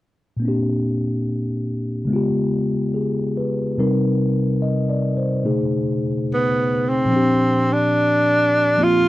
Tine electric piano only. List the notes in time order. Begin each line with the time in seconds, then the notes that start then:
0.37 A#2 A#3
0.42 C4 D4
0.48 G4
2.05 C#3 G#3
2.10 B3 F4
2.16 G4
2.94 G#4
3.37 B4
3.78 C3 G3 C4 D#4 A#4
4.62 D#5
4.89 D5
5.17 C5
5.44 B2 C#3 A3 D#4 G#4
7.05 A#2 F3
7.11 C4 D4
7.16 G4
8.77 F3 A#3 C4 F4